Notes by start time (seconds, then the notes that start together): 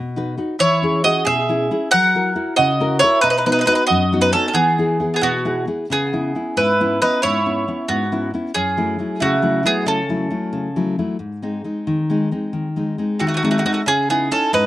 Already playing: B2
0.16 D#4 F#4 B4
0.38 D#4 F#4 B4
0.59 E3 E4 C#5
0.82 C#4 E4 G#4
1.04 C#4 E4 F#4 G#4 D#5
1.25 B2 G#4 E5
1.49 C#4 E4 G#4
1.71 C#4 E4 G#4
1.91 F#3 A#4 F#5
2.15 E4 F#4 A#4
2.36 E4 F#4 A#4
2.56 C#3 F#4 D#5
2.80 E4 F#4 A#4
2.99 E4 F#4 C#5
3.03 A#4
3.21 B2 D#4 B4
3.30 D#4 B4
3.38 D#4 B4
3.46 B3 D#4 F#4 B4
3.52 D#4 B4
3.59 D#4 B4
3.66 B3 D#4 F#4 B4
3.72 D#4 B4
3.87 F#2 F#4 D#5
4.12 B3 D#4 F#4
4.21 D#4 B4
4.32 B3 C#4 D#4 F#4 A4
4.48 C#4 A4
4.53 E3 B3 G#4
4.78 B3 E4 G#4
5.00 B3 E4 G#4
5.14 B3 G#4
5.21 B2 B3 F#4
5.45 B3 E4 G#4
5.67 B3 E4 G#4
5.90 C#3 B3 G#4
6.13 B3 C#4 E4
6.35 B3 C#4 E4
6.57 G#2 E4 B4
6.80 B3 C#4 E4
7.02 B3 C#4 D#4 B4
7.22 G#2 E4 C#5
7.46 B3 C#4 E4
7.68 B3 C#4 E4
7.88 G#2 B3 F#4
8.12 B3 C#4 E4
8.34 B3 C#4 E4
8.54 F#2 C#4 G#4
8.77 F#3 A3 E4
8.99 F#3 A3 E4
9.20 C#3 A3 F#4
9.42 F#3 A3 E4
9.63 F#3 A3 B3 E4 G#4
9.86 C#3 C#4 A4
10.09 F#3 A3 E4
10.31 F#3 A3 E4
10.53 C#3
10.76 F#3 A3 E4
10.99 F#3 A3 E4
11.19 G#2
11.42 G#3 C4 D#4
11.64 G#3 C4 D#4
11.87 D#3
12.10 G#3 C4 D#4
12.32 G#3 C4 D#4
12.53 D#3
12.76 G#3 C4 D#4
12.98 G#3 C4 D#4
13.19 D#3 C4 F#4
13.27 A3 F#4
13.34 A3 F#4
13.43 G#3 A3 C4 D#4 F#4
13.51 A3 F#4
13.58 A3 F#4
13.65 G#3 A3 C4 D#4 F#4
13.73 A3 F#4
13.86 C#3 C#4 G#4
14.09 B3 C#4 D#4 E4 G#4
14.31 C#4 D#4 E4 A4
14.53 G#2 D#4 B4